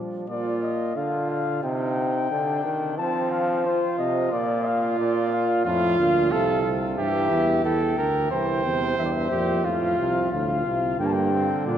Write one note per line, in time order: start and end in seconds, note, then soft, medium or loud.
0.00 0.28 F3 medium
0.29 0.92 A#2 medium
0.29 0.92 F4 medium
0.29 0.60 D5 medium
0.62 0.98 D#5 medium
0.96 1.62 D3 medium
0.96 1.62 F4 medium
0.96 1.30 F5 medium
1.30 1.63 F5 medium
1.63 2.29 C3 medium
1.63 2.29 D#4 medium
1.63 2.95 G5 medium
2.31 2.64 D3 medium
2.31 2.97 D4 medium
2.64 2.99 D#3 medium
2.98 3.81 F3 medium
2.98 3.66 C4 medium
2.98 3.33 A5 medium
3.31 3.65 F5 medium
3.65 4.31 F4 medium
3.65 3.97 C5 medium
3.98 4.31 C3 medium
3.98 4.33 D#5 medium
4.32 4.97 A#2 loud
4.32 5.63 F4 medium
4.32 4.66 D5 medium
4.65 4.98 F5 medium
4.98 5.64 A#2 medium
4.98 5.31 D5 medium
5.32 5.65 F5 medium
5.65 5.96 F2 medium
5.65 5.98 A2 medium
5.65 6.33 F4 loud
5.65 6.68 F5 medium
5.98 6.33 D2 medium
5.98 6.31 A#2 medium
6.31 6.97 C2 medium
6.31 6.64 C3 medium
6.31 6.75 A4 loud
6.65 6.98 C3 medium
6.98 7.31 G2 medium
6.98 8.02 E3 medium
6.98 7.61 G4 loud
6.98 7.61 E5 medium
7.31 7.64 E2 medium
7.64 7.97 E2 medium
7.64 7.98 A4 medium
7.64 8.30 G5 medium
7.97 8.30 D2 medium
7.97 8.31 A#4 medium
8.31 8.66 C2 medium
8.31 8.62 E3 medium
8.31 9.29 C5 loud
8.31 8.97 G5 medium
8.64 8.97 E2 medium
8.64 8.97 C3 medium
8.97 9.30 E2 medium
8.97 9.31 G2 medium
8.97 9.07 E5 medium
9.05 9.14 D5 medium
9.12 9.64 E5 medium
9.31 9.64 F2 medium
9.31 9.66 A#2 medium
9.31 9.67 G4 medium
9.64 9.97 F2 medium
9.64 9.98 A2 medium
9.64 10.31 F4 medium
9.64 10.30 F5 medium
9.98 10.31 C2 medium
9.98 10.31 C3 medium
10.31 10.64 D2 medium
10.31 10.67 A2 medium
10.31 10.98 F4 medium
10.31 10.98 F5 medium
10.65 10.98 C2 medium
10.65 10.99 C3 medium
10.99 11.50 G2 medium
10.99 11.78 D3 medium
10.99 11.31 A#3 medium
10.99 11.08 G5 medium
11.06 11.14 A5 medium
11.13 11.66 G5 medium
11.33 11.66 C4 medium
11.66 11.78 A#2 medium
11.66 11.78 D4 medium
11.66 11.78 D5 medium